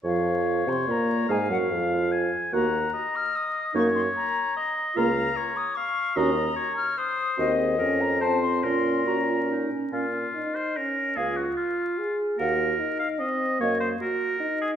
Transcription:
X:1
M:3/4
L:1/8
Q:1/4=147
K:Bbm
V:1 name="Flute"
f3 c' b2 | a g f3 z | b3 f' e'2 | d' c' b3 z |
b3 e' d'2 | b3 f' e'2 | e3 b =a c' | c'2 b2 z2 |
f z4 z | f z4 z | g z4 z | e z4 z |]
V:2 name="Oboe"
d6 | f4 a2 | g2 e4 | d4 e2 |
f2 d2 f2 | e2 d2 c2- | c z B2 c2 | B4- B z |
F3 c B2 | A G F3 z | B3 f e2 | d c B3 A |]
V:3 name="Clarinet"
F3 c B2 | A G F3 z | G z4 z | E z4 z |
F z4 z | G z4 z | G A B2 F2 | F2 G F E D |
D z4 z | B, z4 z | B, z4 z | B, z4 z |]
V:4 name="French horn"
F,3 C B,2 | A, G, F,3 z | B, z4 z | B, z4 z |
B, z4 z | D z4 z | C2 D2 C2 | D2 D3 z |
z2 E2 D2 | F4 A2 | G2 E2 C2 | B,2 G2 E2 |]
V:5 name="Bassoon" clef=bass
F,,3 C, B,,2 | A,, G,, F,,3 z | E,,2 z4 | G,,2 z4 |
D,,2 z4 | E,,2 z4 | E,,2 F,,4 | B,,4- B,, z |
B,,2 z4 | D,,2 z4 | E,,2 z4 | G,,2 z4 |]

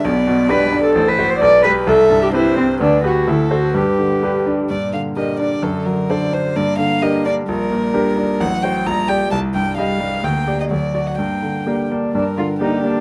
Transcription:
X:1
M:2/4
L:1/16
Q:1/4=129
K:G
V:1 name="Violin"
d8 | c4 B4 | e4 c4 | B4 A4 |
B6 z2 | [K:Gm] d2 f2 e2 d2 | A2 B2 d2 c2 | d2 f2 e2 d2 |
B8 | ^f2 g2 b2 g2 | a2 g2 f4 | g3 e d3 ^f |
g6 z2 | B4 G4 |]
V:2 name="Cello"
B,4 B3 A- | A B2 c d2 B2 | A3 G E2 C2 | D2 F2 E2 F2 |
G6 z2 | [K:Gm] B,,8 | D,8 | B,8 |
G,8 | ^F,4 G,4 | G,8 | B,4 ^F,4 |
B,4 B,2 D2 | D2 F2 E2 D2 |]
V:3 name="Grand piano"
B,,,2 B,,2 [DGB]2 D2 | A,,,2 [Fc]2 B,,,2 [GB]2 | C,,2 G,,2 [CGB]2 C2 | D,,2 [GB]2 D,,2 [Ac]2 |
G,,2 D,2 [DGB]2 D2 | [K:Gm] G,,2 D,2 [DGB]2 D2 | ^F,,2 ^F,2 [DAc]2 D2 | G,,2 D,2 [DGB]2 D2 |
B,,,2 B,,2 [DGB]2 D2 | A,,,2 [^Fc]2 B,,,2 [Gd]2 | C,,2 G,,2 [G,Ge]2 G,2 | D,,2 [Gd]2 D,,2 [^Fd]2 |
G,,2 D,2 [B,Gd]2 B,2 | G,,2 D,2 [B,Gd]2 B,2 |]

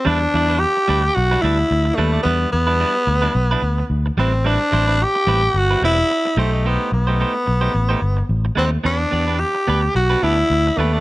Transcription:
X:1
M:4/4
L:1/16
Q:"Swing 16ths" 1/4=109
K:Em
V:1 name="Clean electric guitar"
[G,DEB] z [G,DEd] [G,DEB] z2 [G,DEB] z2 [G,DEB] [G,DEB] z3 [G,DEB] [G,DEd] | [G,DEB]2 z [G,DEB] [G,DEB] z2 [G,DEB] z [G,DEB] z4 [G,CEB] z | [G,CEB] z [G,CEc] [G,CEB] z2 [G,CEB] z2 [G,CEB] [G,CEB] z3 [A,^DGc] [A,DG^d] | [A,^DGc]2 z [A,DGc] [A,DGc] z2 [A,DGc] z [A,DGc] z4 [A,DGc] z |
[B,DGB] z [B,DGd] [B,DGB] z2 [B,DGB] z2 [B,DGB] [B,DGB] z3 [B,DGB] [B,DGd] |]
V:2 name="Tenor saxophone"
D4 G4 F2 E4 A,2 | B,2 B,8- B,2 z2 C2 | D4 G4 F2 E4 A,2 | B,2 B,8- B,2 z2 C2 |
D4 G4 F2 E4 A,2 |]
V:3 name="Fingered electric bass" clef=bass
E,,2 E,,3 z D,,2 B,,,2 D,,2 D,,2 ^D,,2 | E,,2 E,,3 z D,,2 B,,,2 D,,2 D,,2 A,,,2- | A,,,2 A,,,3 z A,,,2 G,,,2 E,,,2 z2 B,,,2- | B,,,2 B,,,3 z B,,,2 A,,,2 G,,,2 A,,,2 ^D,,2 |
E,,2 E,,3 z D,,2 B,,,2 D,,2 D,,2 ^D,,2 |]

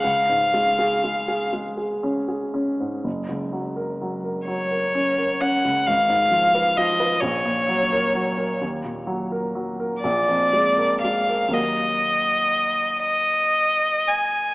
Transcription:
X:1
M:6/8
L:1/16
Q:3/8=41
K:F#
V:1 name="Violin"
e6 z6 | z6 c4 f2 | =f4 d2 c6 | [K:Ebm] z6 =d4 f2 |
e6 e4 a2 |]
V:2 name="Grand piano" clef=bass
C,, G,, G, G G, G G, G C G C G,, | F,,, C,, F, A F, A F, A C A C C,, | _A,,, _A,, =F, _c F, c ^A,,, ^A,, ^F, A F, A | [K:Ebm] E,, B,, G, B G, B B,,, F,, A, B A, B |
[E,,G,B,B]12 |]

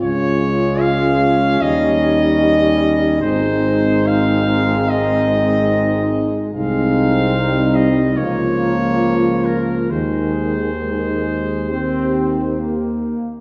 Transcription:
X:1
M:4/4
L:1/8
Q:1/4=72
K:Ab
V:1 name="Flugelhorn"
d2 f2 e4 | c2 f2 e3 z | f3 e d3 B | c6- c z |]
V:2 name="French horn section"
F4 E4- | E8 | E4 F4 | A4 G3 z |]
V:3 name="Trombone section"
D8 | C8 | C4 B,4 | A,2 A,2 C2 B,2 |]
V:4 name="Trombone" clef=bass
A,4 G,4 | A,8 | A,2 G,2 F,4 | E,4 E,3 z |]
V:5 name="Tuba" clef=bass
D,,4 E,,4 | A,,,8 | C,,4 D,,4 | E,,6- E,, z |]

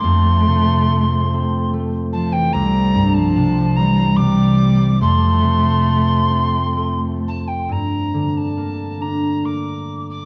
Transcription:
X:1
M:3/4
L:1/16
Q:1/4=70
K:Gm
V:1 name="Tin whistle"
c'8 z2 a g | b3 a3 b2 d'4 | c'8- c'2 a g | b3 a3 b2 d'3 d' |]
V:2 name="Cello" clef=bass
A,8 z2 F, =E, | G,3 F,3 G,2 G,4 | A,8- A,2 z2 | z12 |]
V:3 name="Harp" clef=bass
F,,2 C,2 A,2 C2 A,4 | C,,2 G,,2 C,2 =E,2 C,4 | F,,2 C,2 A,2 C2 A,4 | G,,2 D,2 B,2 D2 B,4 |]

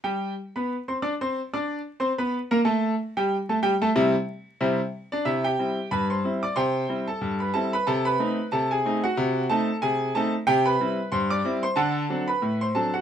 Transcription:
X:1
M:2/4
L:1/16
Q:"Swing 16ths" 1/4=92
K:C
V:1 name="Grand piano"
[G,Gg]3 [B,Bb]2 [Ccc'] [Ddd'] [Ccc']- | [Ccc'] [Ddd']3 [Ccc'] [B,Bb]2 [_B,_B_b] | [A,Aa]3 [G,Gg]2 [A,Aa] [G,Gg] [A,Aa] | [C,G,CE]2 z2 [C,G,CE]2 z [Dd] |
[Ee] [Gg]3 [Bb] [cc']2 [dd'] | [cgc']3 [Aa]2 [Bb] [Aa] [Bb] | [Aa] [Bb]3 [Aa] [_A_a]2 [_G_g]- | [_G_g]2 [Aa]2 [_A_a]2 [=A=a] z |
[Gg] [Bb]3 [cc'] [dd']2 [cc'] | [A^fa]3 [Bb]2 [cc'] [Aa] [^Ff] |]
V:2 name="Grand piano"
z8 | z8 | z8 | z8 |
C,2 [G,CE]2 G,,2 [G,CE]2 | C,2 [G,CE]2 G,,2 [G,CE]2 | C,2 [A,C_E]2 C,2 [A,CE]2 | C,2 [A,C_E]2 C,2 [A,CE]2 |
C,2 [G,CE]2 G,,2 [G,CE]2 | D,2 [^F,CD]2 A,,2 [F,CD]2 |]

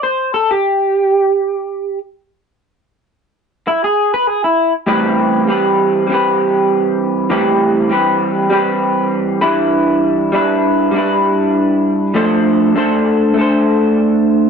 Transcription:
X:1
M:4/4
L:1/16
Q:"Swing 16ths" 1/4=99
K:Am
V:1 name="Clean electric guitar"
c2 A G8- G2 z3 | z8 E ^G2 B G E2 z | [A,,E,G,CGB]4 [G,CGB]4 [G,CGB]8 | [A,,E,G,CGB]4 [G,CGB]4 [G,CGB]6 [E,G,DEB]2- |
[E,G,DEB]4 [G,DEB]4 [G,DEB]8 | [F,A,DAc]4 [A,DAc]4 [A,DAc]8 |]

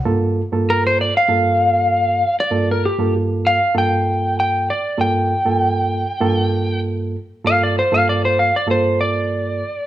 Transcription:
X:1
M:4/4
L:1/16
Q:"Swing 16ths" 1/4=97
K:Gm
V:1 name="Electric slide guitar"
z4 B c d f8 d- | d B G2 z2 f2 g4 g2 d2 | g12 z4 | f d c f d c f d c2 d6 |]
V:2 name="Reed electric piano"
[G,,B,FA]2 z [G,,B,FA]4 z [G,,B,FA]6 z2 | [G,,B,FA]2 z [G,,B,FA]4 z [G,,B,FA]6 z2 | [G,,B,FA]2 z [G,,B,FA]4 z [G,,B,FA]6 z2 | [G,,B,FA]2 z [G,,B,FA]4 z [G,,B,FA]6 z2 |]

